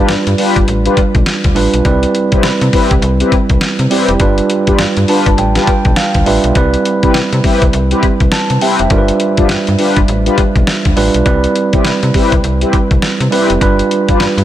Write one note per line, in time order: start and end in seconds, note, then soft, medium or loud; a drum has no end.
0.00 0.38 G3 medium
0.00 0.11 D4 medium
0.00 0.38 D4 medium
0.00 0.11 F4 medium
0.00 0.38 F4 medium
0.00 0.11 G4 medium
0.00 0.11 B4 medium
0.00 0.42 B4 loud
0.09 0.16 G2 soft
0.09 snare loud
0.09 closed hi-hat medium
0.27 0.35 G2 loud
0.27 closed hi-hat medium
0.38 0.57 D4 medium
0.38 0.57 F4 medium
0.38 0.57 G4 medium
0.38 0.58 B4 medium
0.38 open hi-hat medium
0.56 0.64 G1 medium
0.56 kick medium
0.56 closed hi-hat medium
0.68 0.88 A1 loud
0.68 closed hi-hat medium
0.85 0.99 D4 medium
0.85 0.99 F4 medium
0.85 0.99 G4 medium
0.85 1.00 B4 medium
0.85 closed hi-hat medium
0.97 kick medium
0.97 closed hi-hat medium
1.15 1.23 B1 medium
1.15 kick medium
1.15 closed hi-hat soft
1.26 snare loud
1.26 closed hi-hat medium
1.44 1.52 D2 medium
1.44 kick loud
1.44 closed hi-hat medium
1.55 1.68 A1 medium
1.55 1.79 G3 medium
1.55 1.79 D4 medium
1.55 1.79 F4 medium
1.55 1.80 B4 medium
1.55 open hi-hat medium
1.74 1.82 B1 medium
1.74 closed hi-hat medium
1.85 2.06 C2 loud
1.85 2.73 G3 loud
1.85 2.74 C4 medium
1.85 2.74 E4 medium
1.85 2.74 B4 loud
1.85 kick loud
1.85 closed hi-hat medium
2.03 closed hi-hat medium
2.15 closed hi-hat medium
2.32 2.37 C3 soft
2.32 2.46 C4 medium
2.32 2.46 E4 medium
2.32 2.46 G4 medium
2.32 2.47 B4 medium
2.32 kick loud
2.32 closed hi-hat medium
2.43 2.51 C3 soft
2.43 snare loud
2.43 closed hi-hat medium
2.61 2.70 C3 loud
2.61 closed hi-hat medium
2.73 2.93 C4 medium
2.73 2.93 E4 medium
2.73 2.93 G4 medium
2.73 2.93 B4 medium
2.73 kick loud
2.73 open hi-hat medium
2.91 2.99 C2 medium
2.91 kick loud
2.91 closed hi-hat medium
3.02 3.23 C2 loud
3.02 closed hi-hat medium
3.20 3.34 C4 medium
3.20 3.34 E4 medium
3.20 3.35 G4 medium
3.20 3.35 B4 medium
3.20 closed hi-hat medium
3.32 kick loud
3.32 closed hi-hat medium
3.49 3.58 C2 medium
3.49 kick medium
3.49 closed hi-hat soft
3.61 snare loud
3.61 closed hi-hat medium
3.79 3.87 C3 medium
3.79 closed hi-hat medium
3.90 4.14 G3 medium
3.90 4.10 C4 medium
3.90 4.14 C4 medium
3.90 4.10 E4 medium
3.90 4.15 E4 medium
3.90 4.10 G4 medium
3.90 4.15 G4 medium
3.90 4.10 B4 medium
3.90 open hi-hat medium
4.08 4.17 F1 medium
4.08 closed hi-hat medium
4.20 4.41 G1 loud
4.20 5.08 G3 loud
4.20 5.09 D4 medium
4.20 5.09 F4 medium
4.20 5.09 B4 loud
4.20 kick loud
4.20 closed hi-hat medium
4.38 closed hi-hat medium
4.50 closed hi-hat medium
4.67 4.72 G2 soft
4.67 4.81 D4 medium
4.67 4.81 F4 medium
4.67 4.81 G4 medium
4.67 4.81 B4 medium
4.67 kick medium
4.67 closed hi-hat medium
4.79 4.86 G2 medium
4.79 snare loud
4.79 closed hi-hat medium
4.97 5.05 G2 medium
4.97 closed hi-hat medium
5.08 5.28 D4 medium
5.08 5.28 F4 medium
5.08 5.28 G4 medium
5.08 5.28 B4 medium
5.08 5.36 A5 medium
5.08 open hi-hat medium
5.26 5.34 G1 medium
5.26 kick medium
5.26 closed hi-hat medium
5.38 5.58 A1 loud
5.38 5.65 G5 medium
5.38 closed hi-hat medium
5.55 5.70 D4 medium
5.55 5.70 F4 medium
5.55 5.70 G4 medium
5.55 5.70 B4 medium
5.55 snare medium
5.55 closed hi-hat medium
5.67 5.95 G5 medium
5.67 kick medium
5.67 closed hi-hat medium
5.85 5.93 B1 loud
5.85 kick medium
5.85 closed hi-hat soft
5.96 6.24 F5 medium
5.96 snare loud
5.96 closed hi-hat medium
6.14 6.23 D2 medium
6.14 kick medium
6.14 closed hi-hat soft
6.26 6.39 A1 medium
6.26 6.50 G3 medium
6.26 6.50 D4 medium
6.26 6.50 F4 medium
6.26 6.50 B4 medium
6.26 6.54 E5 medium
6.26 open hi-hat medium
6.44 6.52 B1 medium
6.44 closed hi-hat medium
6.55 6.76 C2 loud
6.55 7.44 G3 medium
6.55 7.44 C4 medium
6.55 7.44 E4 medium
6.55 7.45 B4 loud
6.55 kick loud
6.55 closed hi-hat medium
6.74 closed hi-hat medium
6.85 closed hi-hat medium
7.02 7.08 C3 soft
7.02 7.17 C4 medium
7.02 7.17 E4 medium
7.02 7.17 G4 medium
7.02 7.17 B4 medium
7.02 kick medium
7.02 closed hi-hat medium
7.14 7.22 C3 soft
7.14 snare loud
7.14 closed hi-hat medium
7.33 7.40 C3 loud
7.33 closed hi-hat medium
7.43 7.63 C4 medium
7.43 7.63 E4 medium
7.43 7.63 G4 medium
7.43 7.63 B4 medium
7.43 kick loud
7.43 open hi-hat medium
7.62 7.70 C2 loud
7.62 kick loud
7.62 closed hi-hat medium
7.73 7.94 C2 loud
7.73 closed hi-hat medium
7.91 8.05 C4 medium
7.91 8.05 E4 medium
7.91 8.05 G4 medium
7.91 8.05 B4 medium
7.91 closed hi-hat soft
8.03 kick loud
8.03 closed hi-hat medium
8.20 8.29 C2 medium
8.20 kick medium
8.20 closed hi-hat soft
8.32 8.60 A5 medium
8.32 snare loud
8.32 closed hi-hat medium
8.50 8.58 C3 medium
8.50 closed hi-hat medium
8.61 8.81 C4 medium
8.61 8.81 E4 medium
8.61 8.81 G4 medium
8.61 8.81 B4 medium
8.61 8.78 E5 medium
8.61 8.79 G5 medium
8.61 open hi-hat medium
8.79 8.87 F1 medium
8.79 9.08 C5 medium
8.79 9.07 E5 medium
8.79 closed hi-hat medium
8.90 9.11 G1 loud
8.90 9.79 G3 loud
8.90 9.79 D4 medium
8.90 9.80 F4 medium
8.90 8.99 A#4 medium
8.90 kick loud
8.90 closed hi-hat medium
8.98 9.83 B4 loud
9.08 closed hi-hat medium
9.20 closed hi-hat medium
9.37 9.42 G2 soft
9.37 9.52 D4 medium
9.37 9.52 F4 medium
9.37 9.52 G4 medium
9.37 9.52 B4 medium
9.37 kick medium
9.37 closed hi-hat medium
9.49 9.57 G2 medium
9.49 snare loud
9.49 closed hi-hat medium
9.67 9.76 G2 medium
9.67 closed hi-hat soft
9.78 9.98 D4 medium
9.78 9.98 F4 medium
9.78 9.98 G4 medium
9.78 9.98 B4 medium
9.78 open hi-hat medium
9.96 10.05 G1 medium
9.96 kick loud
9.96 closed hi-hat medium
10.08 10.29 A1 loud
10.08 closed hi-hat medium
10.26 10.40 D4 medium
10.26 10.40 F4 medium
10.26 10.40 G4 medium
10.26 10.40 B4 medium
10.26 closed hi-hat soft
10.38 kick medium
10.38 closed hi-hat medium
10.55 10.64 B1 medium
10.55 kick medium
10.55 closed hi-hat soft
10.67 snare loud
10.67 closed hi-hat medium
10.85 10.93 D2 medium
10.85 kick medium
10.85 closed hi-hat medium
10.96 11.10 A1 medium
10.96 11.20 G3 medium
10.96 11.20 D4 medium
10.96 11.20 F4 medium
10.96 11.21 B4 loud
10.96 open hi-hat medium
11.14 11.23 B1 medium
11.14 closed hi-hat medium
11.25 11.47 C2 loud
11.25 12.14 G3 loud
11.25 12.14 C4 medium
11.25 12.15 E4 medium
11.25 12.15 B4 loud
11.25 kick loud
11.25 closed hi-hat medium
11.44 closed hi-hat medium
11.56 closed hi-hat medium
11.73 11.78 C3 soft
11.73 11.87 C4 medium
11.73 11.87 E4 medium
11.73 11.87 G4 medium
11.73 11.88 B4 medium
11.73 kick loud
11.73 closed hi-hat soft
11.85 11.92 C3 soft
11.85 snare loud
11.85 closed hi-hat medium
12.03 12.11 C3 medium
12.03 closed hi-hat medium
12.14 12.34 C4 medium
12.14 12.34 E4 medium
12.14 12.34 G4 medium
12.14 12.34 B4 medium
12.14 kick loud
12.14 open hi-hat medium
12.32 12.40 C2 medium
12.32 kick medium
12.32 closed hi-hat medium
12.44 12.65 C2 loud
12.44 closed hi-hat medium
12.61 12.75 C4 medium
12.61 12.76 E4 medium
12.61 12.76 G4 medium
12.61 12.76 B4 medium
12.61 closed hi-hat medium
12.73 kick loud
12.73 closed hi-hat medium
12.91 12.99 C2 loud
12.91 kick medium
12.91 closed hi-hat soft
13.02 snare loud
13.02 closed hi-hat medium
13.20 13.28 C3 loud
13.20 closed hi-hat medium
13.31 13.55 G3 medium
13.31 13.55 C4 medium
13.31 13.51 C4 medium
13.31 13.55 E4 medium
13.31 13.51 E4 medium
13.31 13.52 G4 medium
13.31 13.56 B4 loud
13.31 13.52 B4 medium
13.31 open hi-hat medium
13.50 13.58 F1 medium
13.50 closed hi-hat medium
13.61 13.82 G1 loud
13.61 14.44 G3 medium
13.61 14.44 D4 medium
13.61 14.44 F4 medium
13.61 14.44 B4 loud
13.61 kick loud
13.61 closed hi-hat medium
13.79 closed hi-hat medium
13.91 closed hi-hat medium
14.08 14.13 G2 soft
14.08 14.22 D4 medium
14.08 14.23 F4 medium
14.08 14.23 G4 medium
14.08 14.23 B4 medium
14.08 kick medium
14.08 closed hi-hat medium
14.20 14.27 G2 soft
14.20 snare loud
14.20 closed hi-hat medium
14.37 14.44 G2 loud
14.37 closed hi-hat medium